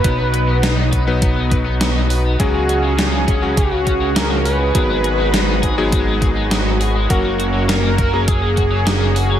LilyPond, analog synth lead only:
\new Staff \with { instrumentName = "Analog synth lead" } { \time 4/4 \key fis \major \tempo 4 = 102 b'2~ b'8 r4. | fis'4 gis'4 fis'4 ais'8 b'8~ | b'2~ b'8 r4. | fis'4 ais'4 gis'2 | }